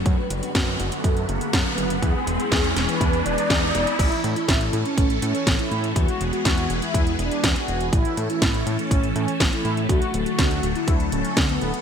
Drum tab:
CC |----------------|----------------|x---------------|----------------|
HH |x-xxx-xxxxxxx-xx|x-xxxxxxxxxxx-xx|xxxxxxxxxxxxxxxx|xxxxxxxxxxxxxxxx|
SD |----o-------o---|----o-o-----o---|----o-------o---|----o-------o---|
BD |o---o---o---o---|o---o---o---o---|o---o---o---o---|o---o---o---o---|

CC |----------------|----------------|
HH |xxxxxxxxxxxxxxxx|xxxxxxxxxxxxxxxx|
SD |----o-------o---|----o-------o---|
BD |o---o---o---o---|o---o---o---o---|